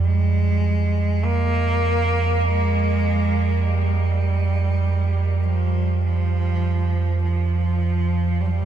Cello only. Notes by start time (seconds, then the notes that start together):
0.04 G#3
1.24 A#3
2.44 G#3
3.63 G3
5.44 F3
6.04 F3
7.23 F3
8.41 G3
8.46 F3
8.52 G3